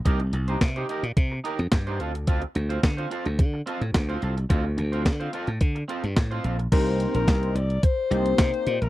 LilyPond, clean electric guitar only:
\new Staff \with { instrumentName = "Clean electric guitar" } { \time 4/4 \key c \dorian \tempo 4 = 108 <ees' g' bes'>16 r8 <ees' g' c''>16 r16 <ees' g' c''>16 <ees' g' bes'>16 r8. <ees' g' bes'>16 r8 <ees' g' c''>16 <c' f' a'>16 r16 | <c' f' a'>16 r8 <c' f' c''>16 r16 <c' f' c''>16 <c' f' a'>16 r8. <c' f' a'>16 r8 <c' f' c''>16 <c' f' a'>16 r16 | <c' f' a'>16 r8 <c' f' c''>16 r16 <c' f' c''>16 <c' f' a'>16 r8. <c' f' a'>16 r8 <c' f' c''>16 <c' f' a'>16 r16 | r1 | }